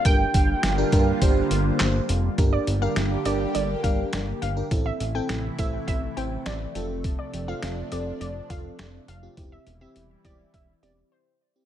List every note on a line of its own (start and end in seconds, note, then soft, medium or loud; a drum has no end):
0.05 0.25 G1 loud
0.05 2.36 D3 medium
0.05 2.36 G3 medium
0.05 2.36 A#3 medium
0.05 0.57 D4 medium
0.05 2.36 F4 medium
0.05 0.57 G4 medium
0.05 0.57 A#4 medium
0.05 1.76 G5 loud
0.05 kick loud
0.05 closed hi-hat medium
0.34 0.55 G1 loud
0.34 kick medium
0.34 closed hi-hat medium
0.63 0.84 G1 loud
0.63 snare loud
0.63 closed hi-hat medium
0.78 0.88 D4 medium
0.78 0.88 G4 medium
0.78 0.88 A#4 loud
0.92 1.13 G2 loud
0.92 1.13 D4 medium
0.92 1.13 G4 medium
0.92 1.13 A#4 loud
0.92 kick medium
0.92 closed hi-hat medium
1.22 1.42 G1 loud
1.22 2.05 D4 medium
1.22 2.05 G4 medium
1.22 2.05 C5 loud
1.22 kick loud
1.22 closed hi-hat medium
1.51 1.71 G1 loud
1.51 closed hi-hat medium
1.80 2.00 G1 loud
1.80 snare loud
1.80 clap loud
1.80 closed hi-hat medium
2.09 2.29 F1 loud
2.09 closed hi-hat medium
2.38 2.59 G1 loud
2.38 4.69 D3 medium
2.38 4.69 G3 medium
2.38 4.69 A#3 medium
2.38 2.70 D4 medium
2.38 4.69 G4 medium
2.38 2.70 G4 medium
2.38 2.70 A#4 loud
2.38 kick loud
2.38 closed hi-hat medium
2.53 2.62 D5 medium
2.67 2.88 G1 loud
2.67 closed hi-hat medium
2.82 3.13 D4 medium
2.82 3.13 G4 medium
2.82 3.13 A#4 medium
2.82 3.01 F5 medium
2.96 3.17 G1 loud
2.96 snare loud
2.96 closed hi-hat medium
3.25 3.46 G1 loud
3.25 3.67 D4 medium
3.25 3.67 G4 medium
3.25 3.67 A#4 loud
3.25 3.35 D5 medium
3.25 closed hi-hat medium
3.55 3.75 G1 loud
3.55 3.73 D5 medium
3.55 closed hi-hat medium
3.84 4.04 G1 medium
3.84 4.36 D4 medium
3.84 4.36 G4 medium
3.84 4.36 A#4 medium
3.84 3.93 F5 medium
3.84 kick medium
3.84 closed hi-hat medium
4.13 4.33 G1 loud
4.13 snare loud
4.13 closed hi-hat medium
4.42 4.62 G1 medium
4.42 4.51 F5 medium
4.42 closed hi-hat medium
4.57 4.67 D4 medium
4.57 4.67 G4 medium
4.57 4.67 A#4 medium
4.71 4.92 A1 loud
4.71 11.65 C3 medium
4.71 6.73 E3 medium
4.71 9.33 A3 medium
4.71 5.03 C4 medium
4.71 6.73 E4 medium
4.71 5.02 E4 medium
4.71 5.02 A4 loud
4.71 kick loud
4.71 closed hi-hat medium
4.86 4.95 E5 medium
5.00 5.21 A1 loud
5.00 closed hi-hat medium
5.15 5.46 C4 medium
5.15 5.46 E4 medium
5.15 5.46 A4 loud
5.15 5.34 G5 medium
5.29 5.50 A1 loud
5.29 snare loud
5.29 closed hi-hat medium
5.59 5.79 A1 loud
5.59 6.00 C4 medium
5.59 6.00 E4 medium
5.59 6.00 A4 medium
5.59 5.68 E5 medium
5.59 kick medium
5.59 closed hi-hat medium
5.88 6.08 A1 loud
5.88 6.06 E5 medium
5.88 kick medium
5.88 closed hi-hat medium
6.17 6.37 A1 loud
6.17 6.69 C4 medium
6.17 6.69 E4 medium
6.17 6.69 C5 medium
6.17 6.26 G5 medium
6.17 closed hi-hat medium
6.46 6.66 A1 loud
6.46 6.87 D5 medium
6.46 snare loud
6.46 closed hi-hat medium
6.75 7.16 F1 medium
6.75 9.35 F3 medium
6.75 7.33 C4 medium
6.75 9.35 D4 medium
6.75 7.33 F4 medium
6.75 7.33 A4 loud
6.75 closed hi-hat medium
7.04 kick loud
7.04 closed hi-hat medium
7.19 7.28 D5 medium
7.33 7.54 F1 medium
7.33 closed hi-hat medium
7.48 7.79 C4 medium
7.48 7.79 F4 medium
7.48 7.79 A4 medium
7.48 7.67 F5 medium
7.62 7.83 F1 loud
7.62 snare loud
7.62 closed hi-hat medium
7.92 8.12 F1 medium
7.92 8.33 C4 medium
7.92 8.33 F4 medium
7.92 8.33 A4 medium
7.92 8.01 D5 medium
7.92 closed hi-hat medium
8.21 8.41 F1 loud
8.21 8.40 D5 medium
8.21 closed hi-hat medium
8.50 8.70 F1 loud
8.50 9.02 C4 medium
8.50 9.02 F4 medium
8.50 9.02 A4 medium
8.50 8.59 F5 medium
8.50 kick medium
8.50 closed hi-hat medium
8.79 8.99 F1 medium
8.79 snare loud
8.79 closed hi-hat medium
9.08 9.29 F1 medium
9.08 9.18 F5 medium
9.08 closed hi-hat medium
9.23 9.33 C4 medium
9.23 9.33 F4 medium
9.23 9.33 G4 medium
9.37 9.58 E1 loud
9.37 11.65 E3 medium
9.37 11.65 G3 medium
9.37 9.69 C4 medium
9.37 11.65 E4 medium
9.37 9.69 E4 medium
9.37 9.69 G4 medium
9.37 kick loud
9.37 closed hi-hat medium
9.52 9.61 E5 medium
9.66 9.87 E1 loud
9.66 closed hi-hat medium
9.81 10.12 C4 medium
9.81 10.12 E4 medium
9.81 10.12 G4 medium
9.81 10.00 E5 medium
9.96 10.16 E1 loud
9.96 closed hi-hat medium
10.25 10.45 E1 loud
10.25 10.66 C4 medium
10.25 10.66 E4 medium
10.25 10.66 G4 medium
10.25 10.34 D5 medium
10.25 kick medium
10.25 closed hi-hat medium
10.54 10.74 E1 loud
10.54 10.73 E5 medium
10.54 kick medium
10.54 closed hi-hat medium
10.83 11.03 E1 loud
10.83 11.35 C4 medium
10.83 11.35 E4 medium
10.83 11.35 G4 medium
10.83 10.92 D5 medium
10.83 closed hi-hat medium
11.12 11.53 C5 medium
11.56 11.65 C4 medium
11.56 11.65 E4 medium
11.56 11.65 G4 medium